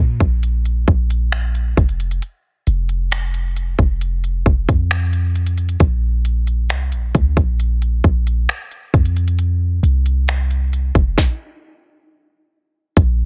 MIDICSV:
0, 0, Header, 1, 3, 480
1, 0, Start_track
1, 0, Tempo, 895522
1, 1191, Time_signature, 4, 2, 24, 8
1, 7104, End_track
2, 0, Start_track
2, 0, Title_t, "808-style bass"
2, 0, Program_c, 0, 38
2, 0, Note_on_c, 0, 46, 94
2, 106, Note_off_c, 0, 46, 0
2, 110, Note_on_c, 0, 34, 97
2, 456, Note_off_c, 0, 34, 0
2, 471, Note_on_c, 0, 34, 100
2, 932, Note_off_c, 0, 34, 0
2, 950, Note_on_c, 0, 29, 97
2, 1181, Note_off_c, 0, 29, 0
2, 1432, Note_on_c, 0, 29, 100
2, 2010, Note_off_c, 0, 29, 0
2, 2030, Note_on_c, 0, 29, 97
2, 2376, Note_off_c, 0, 29, 0
2, 2391, Note_on_c, 0, 29, 97
2, 2506, Note_off_c, 0, 29, 0
2, 2512, Note_on_c, 0, 41, 97
2, 3090, Note_off_c, 0, 41, 0
2, 3110, Note_on_c, 0, 34, 108
2, 3591, Note_on_c, 0, 36, 101
2, 3599, Note_off_c, 0, 34, 0
2, 3709, Note_on_c, 0, 34, 95
2, 3717, Note_off_c, 0, 36, 0
2, 3824, Note_off_c, 0, 34, 0
2, 3831, Note_on_c, 0, 38, 95
2, 3946, Note_off_c, 0, 38, 0
2, 3949, Note_on_c, 0, 34, 97
2, 4296, Note_off_c, 0, 34, 0
2, 4311, Note_on_c, 0, 34, 93
2, 4541, Note_off_c, 0, 34, 0
2, 4790, Note_on_c, 0, 41, 97
2, 5251, Note_off_c, 0, 41, 0
2, 5270, Note_on_c, 0, 36, 98
2, 5849, Note_off_c, 0, 36, 0
2, 5870, Note_on_c, 0, 29, 96
2, 5986, Note_off_c, 0, 29, 0
2, 6951, Note_on_c, 0, 34, 115
2, 7104, Note_off_c, 0, 34, 0
2, 7104, End_track
3, 0, Start_track
3, 0, Title_t, "Drums"
3, 109, Note_on_c, 9, 36, 88
3, 110, Note_on_c, 9, 42, 51
3, 163, Note_off_c, 9, 36, 0
3, 163, Note_off_c, 9, 42, 0
3, 231, Note_on_c, 9, 42, 65
3, 284, Note_off_c, 9, 42, 0
3, 351, Note_on_c, 9, 42, 47
3, 404, Note_off_c, 9, 42, 0
3, 470, Note_on_c, 9, 36, 87
3, 524, Note_off_c, 9, 36, 0
3, 591, Note_on_c, 9, 42, 66
3, 645, Note_off_c, 9, 42, 0
3, 709, Note_on_c, 9, 42, 59
3, 710, Note_on_c, 9, 26, 99
3, 763, Note_off_c, 9, 26, 0
3, 763, Note_off_c, 9, 42, 0
3, 830, Note_on_c, 9, 42, 55
3, 883, Note_off_c, 9, 42, 0
3, 951, Note_on_c, 9, 36, 106
3, 952, Note_on_c, 9, 42, 61
3, 1004, Note_off_c, 9, 36, 0
3, 1005, Note_off_c, 9, 42, 0
3, 1012, Note_on_c, 9, 42, 55
3, 1065, Note_off_c, 9, 42, 0
3, 1071, Note_on_c, 9, 42, 58
3, 1125, Note_off_c, 9, 42, 0
3, 1132, Note_on_c, 9, 42, 54
3, 1186, Note_off_c, 9, 42, 0
3, 1191, Note_on_c, 9, 42, 80
3, 1245, Note_off_c, 9, 42, 0
3, 1431, Note_on_c, 9, 42, 66
3, 1484, Note_off_c, 9, 42, 0
3, 1550, Note_on_c, 9, 42, 44
3, 1603, Note_off_c, 9, 42, 0
3, 1670, Note_on_c, 9, 42, 68
3, 1673, Note_on_c, 9, 26, 103
3, 1723, Note_off_c, 9, 42, 0
3, 1727, Note_off_c, 9, 26, 0
3, 1790, Note_on_c, 9, 42, 52
3, 1844, Note_off_c, 9, 42, 0
3, 1911, Note_on_c, 9, 42, 70
3, 1964, Note_off_c, 9, 42, 0
3, 2030, Note_on_c, 9, 36, 85
3, 2030, Note_on_c, 9, 42, 48
3, 2083, Note_off_c, 9, 36, 0
3, 2084, Note_off_c, 9, 42, 0
3, 2151, Note_on_c, 9, 42, 68
3, 2205, Note_off_c, 9, 42, 0
3, 2272, Note_on_c, 9, 42, 45
3, 2325, Note_off_c, 9, 42, 0
3, 2391, Note_on_c, 9, 36, 88
3, 2444, Note_off_c, 9, 36, 0
3, 2512, Note_on_c, 9, 36, 95
3, 2513, Note_on_c, 9, 42, 65
3, 2566, Note_off_c, 9, 36, 0
3, 2567, Note_off_c, 9, 42, 0
3, 2631, Note_on_c, 9, 26, 102
3, 2631, Note_on_c, 9, 42, 58
3, 2685, Note_off_c, 9, 26, 0
3, 2685, Note_off_c, 9, 42, 0
3, 2750, Note_on_c, 9, 42, 56
3, 2803, Note_off_c, 9, 42, 0
3, 2870, Note_on_c, 9, 42, 59
3, 2924, Note_off_c, 9, 42, 0
3, 2929, Note_on_c, 9, 42, 62
3, 2983, Note_off_c, 9, 42, 0
3, 2989, Note_on_c, 9, 42, 54
3, 3042, Note_off_c, 9, 42, 0
3, 3049, Note_on_c, 9, 42, 57
3, 3102, Note_off_c, 9, 42, 0
3, 3108, Note_on_c, 9, 42, 82
3, 3110, Note_on_c, 9, 36, 114
3, 3162, Note_off_c, 9, 42, 0
3, 3164, Note_off_c, 9, 36, 0
3, 3350, Note_on_c, 9, 42, 68
3, 3403, Note_off_c, 9, 42, 0
3, 3469, Note_on_c, 9, 42, 45
3, 3523, Note_off_c, 9, 42, 0
3, 3589, Note_on_c, 9, 42, 64
3, 3592, Note_on_c, 9, 26, 99
3, 3642, Note_off_c, 9, 42, 0
3, 3646, Note_off_c, 9, 26, 0
3, 3709, Note_on_c, 9, 42, 55
3, 3763, Note_off_c, 9, 42, 0
3, 3831, Note_on_c, 9, 36, 84
3, 3831, Note_on_c, 9, 42, 70
3, 3884, Note_off_c, 9, 36, 0
3, 3884, Note_off_c, 9, 42, 0
3, 3950, Note_on_c, 9, 36, 90
3, 3950, Note_on_c, 9, 42, 50
3, 4003, Note_off_c, 9, 36, 0
3, 4004, Note_off_c, 9, 42, 0
3, 4072, Note_on_c, 9, 42, 67
3, 4125, Note_off_c, 9, 42, 0
3, 4191, Note_on_c, 9, 42, 46
3, 4245, Note_off_c, 9, 42, 0
3, 4310, Note_on_c, 9, 36, 85
3, 4364, Note_off_c, 9, 36, 0
3, 4432, Note_on_c, 9, 42, 65
3, 4486, Note_off_c, 9, 42, 0
3, 4551, Note_on_c, 9, 26, 103
3, 4551, Note_on_c, 9, 42, 61
3, 4605, Note_off_c, 9, 26, 0
3, 4605, Note_off_c, 9, 42, 0
3, 4671, Note_on_c, 9, 42, 55
3, 4724, Note_off_c, 9, 42, 0
3, 4791, Note_on_c, 9, 36, 109
3, 4793, Note_on_c, 9, 42, 58
3, 4844, Note_off_c, 9, 36, 0
3, 4847, Note_off_c, 9, 42, 0
3, 4853, Note_on_c, 9, 42, 59
3, 4906, Note_off_c, 9, 42, 0
3, 4912, Note_on_c, 9, 42, 56
3, 4966, Note_off_c, 9, 42, 0
3, 4972, Note_on_c, 9, 42, 58
3, 5026, Note_off_c, 9, 42, 0
3, 5031, Note_on_c, 9, 42, 83
3, 5085, Note_off_c, 9, 42, 0
3, 5272, Note_on_c, 9, 42, 67
3, 5326, Note_off_c, 9, 42, 0
3, 5391, Note_on_c, 9, 42, 46
3, 5445, Note_off_c, 9, 42, 0
3, 5511, Note_on_c, 9, 42, 69
3, 5514, Note_on_c, 9, 26, 102
3, 5564, Note_off_c, 9, 42, 0
3, 5568, Note_off_c, 9, 26, 0
3, 5631, Note_on_c, 9, 42, 50
3, 5685, Note_off_c, 9, 42, 0
3, 5752, Note_on_c, 9, 42, 69
3, 5806, Note_off_c, 9, 42, 0
3, 5870, Note_on_c, 9, 36, 88
3, 5872, Note_on_c, 9, 42, 50
3, 5924, Note_off_c, 9, 36, 0
3, 5925, Note_off_c, 9, 42, 0
3, 5991, Note_on_c, 9, 36, 103
3, 5994, Note_on_c, 9, 38, 87
3, 6044, Note_off_c, 9, 36, 0
3, 6048, Note_off_c, 9, 38, 0
3, 6950, Note_on_c, 9, 42, 82
3, 6951, Note_on_c, 9, 36, 117
3, 7004, Note_off_c, 9, 36, 0
3, 7004, Note_off_c, 9, 42, 0
3, 7104, End_track
0, 0, End_of_file